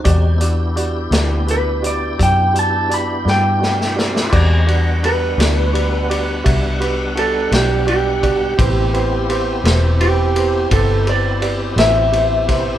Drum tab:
CC |------------------------|x-----------------------|------------------------|
RD |------------------------|--x-x-x-x-x-x-x-x-x-x-x-|x-x-x-x-x-x-x-x-x-x-x-x-|
HH |x-x-x-x-x-x-x-x-x-------|------------------------|------------------------|
SD |------o-----------o-oooo|------o-----------o-----|------o-----------o---o-|
BD |o-----------o-----------|o-----------o---------o-|o-----------o---------o-|